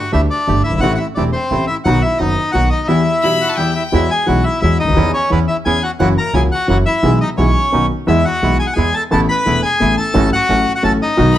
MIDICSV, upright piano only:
0, 0, Header, 1, 2, 480
1, 0, Start_track
1, 0, Key_signature, 1, "minor"
1, 0, Tempo, 345622
1, 1133, Time_signature, 3, 2, 24, 8
1, 5454, Key_signature, 4, "major"
1, 15807, End_track
2, 0, Start_track
2, 0, Title_t, "Upright piano"
2, 0, Program_c, 0, 0
2, 171, Note_on_c, 0, 55, 36
2, 172, Note_on_c, 0, 50, 47
2, 173, Note_on_c, 0, 38, 43
2, 174, Note_on_c, 0, 57, 37
2, 180, Note_on_c, 0, 67, 42
2, 374, Note_off_c, 0, 50, 0
2, 374, Note_off_c, 0, 55, 0
2, 375, Note_off_c, 0, 38, 0
2, 375, Note_off_c, 0, 57, 0
2, 378, Note_off_c, 0, 67, 0
2, 656, Note_on_c, 0, 43, 47
2, 656, Note_on_c, 0, 50, 40
2, 656, Note_on_c, 0, 55, 36
2, 662, Note_on_c, 0, 57, 39
2, 663, Note_on_c, 0, 31, 41
2, 664, Note_on_c, 0, 67, 41
2, 856, Note_off_c, 0, 43, 0
2, 856, Note_off_c, 0, 50, 0
2, 856, Note_off_c, 0, 55, 0
2, 860, Note_off_c, 0, 31, 0
2, 860, Note_off_c, 0, 57, 0
2, 860, Note_off_c, 0, 67, 0
2, 961, Note_on_c, 0, 30, 45
2, 1017, Note_off_c, 0, 30, 0
2, 1022, Note_on_c, 0, 31, 56
2, 1078, Note_off_c, 0, 31, 0
2, 1086, Note_on_c, 0, 32, 64
2, 1140, Note_off_c, 0, 32, 0
2, 1147, Note_on_c, 0, 48, 60
2, 1148, Note_on_c, 0, 52, 51
2, 1151, Note_on_c, 0, 45, 71
2, 1151, Note_on_c, 0, 57, 53
2, 1152, Note_on_c, 0, 64, 66
2, 1155, Note_on_c, 0, 33, 71
2, 1342, Note_off_c, 0, 48, 0
2, 1342, Note_off_c, 0, 52, 0
2, 1344, Note_off_c, 0, 45, 0
2, 1344, Note_off_c, 0, 57, 0
2, 1344, Note_off_c, 0, 64, 0
2, 1345, Note_off_c, 0, 33, 0
2, 1620, Note_on_c, 0, 48, 42
2, 1621, Note_on_c, 0, 28, 50
2, 1625, Note_on_c, 0, 52, 40
2, 1626, Note_on_c, 0, 40, 45
2, 1628, Note_on_c, 0, 57, 40
2, 1630, Note_on_c, 0, 64, 51
2, 1818, Note_off_c, 0, 28, 0
2, 1818, Note_off_c, 0, 48, 0
2, 1820, Note_off_c, 0, 52, 0
2, 1821, Note_off_c, 0, 40, 0
2, 1822, Note_off_c, 0, 57, 0
2, 1823, Note_off_c, 0, 64, 0
2, 2108, Note_on_c, 0, 48, 37
2, 2109, Note_on_c, 0, 52, 34
2, 2112, Note_on_c, 0, 45, 48
2, 2114, Note_on_c, 0, 33, 47
2, 2115, Note_on_c, 0, 64, 50
2, 2118, Note_on_c, 0, 57, 41
2, 2302, Note_off_c, 0, 48, 0
2, 2302, Note_off_c, 0, 52, 0
2, 2304, Note_off_c, 0, 45, 0
2, 2305, Note_off_c, 0, 33, 0
2, 2305, Note_off_c, 0, 64, 0
2, 2307, Note_off_c, 0, 57, 0
2, 2572, Note_on_c, 0, 51, 57
2, 2573, Note_on_c, 0, 54, 59
2, 2575, Note_on_c, 0, 47, 70
2, 2577, Note_on_c, 0, 59, 60
2, 2580, Note_on_c, 0, 35, 69
2, 2580, Note_on_c, 0, 66, 68
2, 2772, Note_off_c, 0, 51, 0
2, 2772, Note_off_c, 0, 54, 0
2, 2773, Note_off_c, 0, 47, 0
2, 2774, Note_off_c, 0, 59, 0
2, 2776, Note_off_c, 0, 35, 0
2, 2776, Note_off_c, 0, 66, 0
2, 3044, Note_on_c, 0, 51, 46
2, 3045, Note_on_c, 0, 54, 41
2, 3047, Note_on_c, 0, 42, 46
2, 3048, Note_on_c, 0, 30, 50
2, 3051, Note_on_c, 0, 59, 37
2, 3052, Note_on_c, 0, 66, 46
2, 3246, Note_off_c, 0, 51, 0
2, 3247, Note_off_c, 0, 54, 0
2, 3248, Note_off_c, 0, 42, 0
2, 3249, Note_off_c, 0, 30, 0
2, 3250, Note_off_c, 0, 59, 0
2, 3250, Note_off_c, 0, 66, 0
2, 3517, Note_on_c, 0, 47, 53
2, 3519, Note_on_c, 0, 35, 48
2, 3519, Note_on_c, 0, 54, 35
2, 3519, Note_on_c, 0, 59, 36
2, 3520, Note_on_c, 0, 51, 42
2, 3521, Note_on_c, 0, 66, 51
2, 3723, Note_off_c, 0, 47, 0
2, 3724, Note_off_c, 0, 35, 0
2, 3724, Note_off_c, 0, 59, 0
2, 3725, Note_off_c, 0, 51, 0
2, 3725, Note_off_c, 0, 54, 0
2, 3725, Note_off_c, 0, 66, 0
2, 4001, Note_on_c, 0, 55, 61
2, 4003, Note_on_c, 0, 52, 76
2, 4007, Note_on_c, 0, 40, 73
2, 4007, Note_on_c, 0, 59, 54
2, 4010, Note_on_c, 0, 67, 66
2, 4205, Note_off_c, 0, 55, 0
2, 4208, Note_off_c, 0, 40, 0
2, 4208, Note_off_c, 0, 59, 0
2, 4209, Note_off_c, 0, 52, 0
2, 4210, Note_off_c, 0, 67, 0
2, 4490, Note_on_c, 0, 52, 43
2, 4495, Note_on_c, 0, 47, 50
2, 4495, Note_on_c, 0, 55, 36
2, 4495, Note_on_c, 0, 67, 51
2, 4496, Note_on_c, 0, 59, 38
2, 4497, Note_on_c, 0, 35, 45
2, 4691, Note_off_c, 0, 52, 0
2, 4693, Note_off_c, 0, 47, 0
2, 4693, Note_off_c, 0, 55, 0
2, 4693, Note_off_c, 0, 67, 0
2, 4694, Note_off_c, 0, 35, 0
2, 4694, Note_off_c, 0, 59, 0
2, 4961, Note_on_c, 0, 52, 47
2, 4962, Note_on_c, 0, 55, 35
2, 4964, Note_on_c, 0, 40, 44
2, 4968, Note_on_c, 0, 59, 37
2, 4975, Note_on_c, 0, 67, 43
2, 5170, Note_off_c, 0, 55, 0
2, 5171, Note_off_c, 0, 40, 0
2, 5173, Note_off_c, 0, 59, 0
2, 5174, Note_off_c, 0, 52, 0
2, 5176, Note_off_c, 0, 67, 0
2, 5445, Note_on_c, 0, 52, 72
2, 5450, Note_on_c, 0, 56, 56
2, 5453, Note_on_c, 0, 40, 66
2, 5453, Note_on_c, 0, 59, 60
2, 5455, Note_on_c, 0, 66, 71
2, 5656, Note_off_c, 0, 56, 0
2, 5657, Note_off_c, 0, 40, 0
2, 5657, Note_off_c, 0, 59, 0
2, 5658, Note_off_c, 0, 66, 0
2, 5659, Note_off_c, 0, 52, 0
2, 5919, Note_on_c, 0, 52, 46
2, 5923, Note_on_c, 0, 35, 53
2, 5925, Note_on_c, 0, 56, 42
2, 5927, Note_on_c, 0, 47, 51
2, 5929, Note_on_c, 0, 59, 39
2, 5934, Note_on_c, 0, 66, 51
2, 6131, Note_off_c, 0, 52, 0
2, 6133, Note_off_c, 0, 35, 0
2, 6134, Note_off_c, 0, 56, 0
2, 6135, Note_off_c, 0, 47, 0
2, 6136, Note_off_c, 0, 59, 0
2, 6138, Note_off_c, 0, 66, 0
2, 6410, Note_on_c, 0, 52, 50
2, 6412, Note_on_c, 0, 56, 41
2, 6414, Note_on_c, 0, 40, 46
2, 6414, Note_on_c, 0, 59, 42
2, 6416, Note_on_c, 0, 66, 48
2, 6617, Note_off_c, 0, 52, 0
2, 6617, Note_off_c, 0, 56, 0
2, 6618, Note_off_c, 0, 40, 0
2, 6618, Note_off_c, 0, 59, 0
2, 6619, Note_off_c, 0, 66, 0
2, 6715, Note_on_c, 0, 37, 47
2, 6776, Note_off_c, 0, 37, 0
2, 6778, Note_on_c, 0, 38, 56
2, 6837, Note_off_c, 0, 38, 0
2, 6839, Note_on_c, 0, 39, 72
2, 6894, Note_on_c, 0, 40, 83
2, 6894, Note_on_c, 0, 52, 79
2, 6894, Note_on_c, 0, 59, 61
2, 6895, Note_on_c, 0, 61, 60
2, 6898, Note_off_c, 0, 39, 0
2, 6899, Note_on_c, 0, 68, 70
2, 7095, Note_off_c, 0, 40, 0
2, 7095, Note_off_c, 0, 52, 0
2, 7095, Note_off_c, 0, 59, 0
2, 7096, Note_off_c, 0, 61, 0
2, 7098, Note_off_c, 0, 68, 0
2, 7360, Note_on_c, 0, 52, 53
2, 7364, Note_on_c, 0, 40, 53
2, 7365, Note_on_c, 0, 59, 37
2, 7365, Note_on_c, 0, 61, 42
2, 7370, Note_on_c, 0, 68, 47
2, 7569, Note_off_c, 0, 40, 0
2, 7570, Note_off_c, 0, 52, 0
2, 7570, Note_off_c, 0, 59, 0
2, 7570, Note_off_c, 0, 61, 0
2, 7572, Note_off_c, 0, 68, 0
2, 7856, Note_on_c, 0, 40, 53
2, 7857, Note_on_c, 0, 68, 48
2, 7858, Note_on_c, 0, 52, 53
2, 7860, Note_on_c, 0, 59, 41
2, 7863, Note_on_c, 0, 61, 40
2, 8055, Note_off_c, 0, 40, 0
2, 8055, Note_off_c, 0, 52, 0
2, 8055, Note_off_c, 0, 68, 0
2, 8057, Note_off_c, 0, 59, 0
2, 8058, Note_off_c, 0, 61, 0
2, 8329, Note_on_c, 0, 52, 66
2, 8332, Note_on_c, 0, 58, 58
2, 8332, Note_on_c, 0, 61, 61
2, 8333, Note_on_c, 0, 54, 75
2, 8335, Note_on_c, 0, 42, 81
2, 8339, Note_on_c, 0, 66, 69
2, 8530, Note_off_c, 0, 52, 0
2, 8532, Note_off_c, 0, 54, 0
2, 8532, Note_off_c, 0, 58, 0
2, 8532, Note_off_c, 0, 61, 0
2, 8533, Note_off_c, 0, 42, 0
2, 8535, Note_off_c, 0, 66, 0
2, 8796, Note_on_c, 0, 52, 46
2, 8802, Note_on_c, 0, 49, 58
2, 8803, Note_on_c, 0, 58, 41
2, 8807, Note_on_c, 0, 37, 53
2, 8809, Note_on_c, 0, 61, 42
2, 8812, Note_on_c, 0, 66, 52
2, 9004, Note_off_c, 0, 52, 0
2, 9007, Note_off_c, 0, 49, 0
2, 9007, Note_off_c, 0, 58, 0
2, 9009, Note_off_c, 0, 37, 0
2, 9010, Note_off_c, 0, 61, 0
2, 9012, Note_off_c, 0, 66, 0
2, 9268, Note_on_c, 0, 52, 42
2, 9275, Note_on_c, 0, 42, 54
2, 9275, Note_on_c, 0, 58, 42
2, 9275, Note_on_c, 0, 61, 40
2, 9275, Note_on_c, 0, 66, 47
2, 9277, Note_on_c, 0, 54, 53
2, 9479, Note_off_c, 0, 52, 0
2, 9482, Note_off_c, 0, 42, 0
2, 9482, Note_off_c, 0, 58, 0
2, 9482, Note_off_c, 0, 61, 0
2, 9482, Note_off_c, 0, 66, 0
2, 9484, Note_off_c, 0, 54, 0
2, 9757, Note_on_c, 0, 52, 68
2, 9764, Note_on_c, 0, 56, 59
2, 9765, Note_on_c, 0, 35, 75
2, 9765, Note_on_c, 0, 47, 79
2, 9765, Note_on_c, 0, 68, 80
2, 9766, Note_on_c, 0, 59, 58
2, 9965, Note_off_c, 0, 52, 0
2, 9969, Note_off_c, 0, 35, 0
2, 9969, Note_off_c, 0, 47, 0
2, 9969, Note_off_c, 0, 56, 0
2, 9969, Note_off_c, 0, 68, 0
2, 9970, Note_off_c, 0, 59, 0
2, 10241, Note_on_c, 0, 47, 52
2, 10242, Note_on_c, 0, 52, 50
2, 10243, Note_on_c, 0, 35, 55
2, 10245, Note_on_c, 0, 56, 43
2, 10248, Note_on_c, 0, 59, 43
2, 10249, Note_on_c, 0, 68, 51
2, 10448, Note_off_c, 0, 35, 0
2, 10448, Note_off_c, 0, 47, 0
2, 10448, Note_off_c, 0, 52, 0
2, 10449, Note_off_c, 0, 56, 0
2, 10451, Note_off_c, 0, 59, 0
2, 10451, Note_off_c, 0, 68, 0
2, 10723, Note_on_c, 0, 51, 41
2, 10725, Note_on_c, 0, 47, 45
2, 10726, Note_on_c, 0, 35, 51
2, 10727, Note_on_c, 0, 59, 40
2, 10729, Note_on_c, 0, 61, 40
2, 10729, Note_on_c, 0, 66, 47
2, 10930, Note_off_c, 0, 51, 0
2, 10931, Note_off_c, 0, 47, 0
2, 10932, Note_off_c, 0, 35, 0
2, 10932, Note_off_c, 0, 59, 0
2, 10933, Note_off_c, 0, 61, 0
2, 10933, Note_off_c, 0, 66, 0
2, 11206, Note_on_c, 0, 52, 77
2, 11207, Note_on_c, 0, 40, 83
2, 11210, Note_on_c, 0, 56, 57
2, 11210, Note_on_c, 0, 68, 71
2, 11212, Note_on_c, 0, 59, 62
2, 11413, Note_off_c, 0, 52, 0
2, 11414, Note_off_c, 0, 40, 0
2, 11415, Note_off_c, 0, 56, 0
2, 11415, Note_off_c, 0, 68, 0
2, 11416, Note_off_c, 0, 59, 0
2, 11701, Note_on_c, 0, 52, 47
2, 11702, Note_on_c, 0, 56, 43
2, 11703, Note_on_c, 0, 59, 42
2, 11705, Note_on_c, 0, 35, 53
2, 11706, Note_on_c, 0, 47, 52
2, 11708, Note_on_c, 0, 68, 49
2, 11901, Note_off_c, 0, 52, 0
2, 11902, Note_off_c, 0, 56, 0
2, 11903, Note_off_c, 0, 35, 0
2, 11903, Note_off_c, 0, 59, 0
2, 11904, Note_off_c, 0, 47, 0
2, 11905, Note_off_c, 0, 68, 0
2, 12167, Note_on_c, 0, 52, 50
2, 12175, Note_on_c, 0, 40, 51
2, 12175, Note_on_c, 0, 59, 39
2, 12176, Note_on_c, 0, 56, 39
2, 12178, Note_on_c, 0, 68, 50
2, 12379, Note_off_c, 0, 40, 0
2, 12379, Note_off_c, 0, 52, 0
2, 12379, Note_off_c, 0, 59, 0
2, 12380, Note_off_c, 0, 56, 0
2, 12381, Note_off_c, 0, 68, 0
2, 12648, Note_on_c, 0, 52, 63
2, 12655, Note_on_c, 0, 45, 75
2, 12655, Note_on_c, 0, 59, 60
2, 12656, Note_on_c, 0, 33, 85
2, 12656, Note_on_c, 0, 57, 60
2, 12659, Note_on_c, 0, 69, 69
2, 12857, Note_off_c, 0, 52, 0
2, 12861, Note_off_c, 0, 33, 0
2, 12861, Note_off_c, 0, 45, 0
2, 12861, Note_off_c, 0, 57, 0
2, 12861, Note_off_c, 0, 59, 0
2, 12863, Note_off_c, 0, 69, 0
2, 13133, Note_on_c, 0, 57, 38
2, 13134, Note_on_c, 0, 40, 56
2, 13134, Note_on_c, 0, 52, 49
2, 13135, Note_on_c, 0, 28, 54
2, 13142, Note_on_c, 0, 59, 42
2, 13144, Note_on_c, 0, 69, 51
2, 13339, Note_off_c, 0, 57, 0
2, 13340, Note_off_c, 0, 40, 0
2, 13340, Note_off_c, 0, 52, 0
2, 13341, Note_off_c, 0, 28, 0
2, 13344, Note_off_c, 0, 59, 0
2, 13345, Note_off_c, 0, 69, 0
2, 13610, Note_on_c, 0, 52, 46
2, 13613, Note_on_c, 0, 45, 49
2, 13613, Note_on_c, 0, 59, 42
2, 13615, Note_on_c, 0, 33, 54
2, 13616, Note_on_c, 0, 57, 45
2, 13616, Note_on_c, 0, 69, 50
2, 13816, Note_off_c, 0, 52, 0
2, 13817, Note_off_c, 0, 59, 0
2, 13818, Note_off_c, 0, 33, 0
2, 13818, Note_off_c, 0, 45, 0
2, 13819, Note_off_c, 0, 57, 0
2, 13819, Note_off_c, 0, 69, 0
2, 14081, Note_on_c, 0, 57, 63
2, 14082, Note_on_c, 0, 54, 70
2, 14084, Note_on_c, 0, 33, 82
2, 14086, Note_on_c, 0, 69, 72
2, 14088, Note_on_c, 0, 61, 67
2, 14089, Note_on_c, 0, 45, 82
2, 14288, Note_off_c, 0, 54, 0
2, 14288, Note_off_c, 0, 57, 0
2, 14289, Note_off_c, 0, 33, 0
2, 14291, Note_off_c, 0, 61, 0
2, 14291, Note_off_c, 0, 69, 0
2, 14292, Note_off_c, 0, 45, 0
2, 14572, Note_on_c, 0, 54, 53
2, 14574, Note_on_c, 0, 45, 57
2, 14576, Note_on_c, 0, 33, 61
2, 14576, Note_on_c, 0, 61, 48
2, 14579, Note_on_c, 0, 57, 45
2, 14585, Note_on_c, 0, 69, 54
2, 14771, Note_off_c, 0, 54, 0
2, 14772, Note_off_c, 0, 45, 0
2, 14773, Note_off_c, 0, 33, 0
2, 14773, Note_off_c, 0, 61, 0
2, 14775, Note_off_c, 0, 57, 0
2, 14778, Note_off_c, 0, 69, 0
2, 15037, Note_on_c, 0, 33, 57
2, 15038, Note_on_c, 0, 54, 44
2, 15039, Note_on_c, 0, 57, 45
2, 15043, Note_on_c, 0, 45, 57
2, 15044, Note_on_c, 0, 69, 54
2, 15047, Note_on_c, 0, 61, 43
2, 15245, Note_off_c, 0, 33, 0
2, 15245, Note_off_c, 0, 54, 0
2, 15246, Note_off_c, 0, 57, 0
2, 15248, Note_off_c, 0, 45, 0
2, 15248, Note_off_c, 0, 69, 0
2, 15250, Note_off_c, 0, 61, 0
2, 15517, Note_on_c, 0, 54, 63
2, 15518, Note_on_c, 0, 51, 73
2, 15520, Note_on_c, 0, 35, 89
2, 15520, Note_on_c, 0, 59, 62
2, 15521, Note_on_c, 0, 47, 78
2, 15524, Note_on_c, 0, 66, 75
2, 15724, Note_off_c, 0, 54, 0
2, 15725, Note_off_c, 0, 35, 0
2, 15725, Note_off_c, 0, 51, 0
2, 15726, Note_off_c, 0, 47, 0
2, 15726, Note_off_c, 0, 59, 0
2, 15728, Note_off_c, 0, 66, 0
2, 15807, End_track
0, 0, End_of_file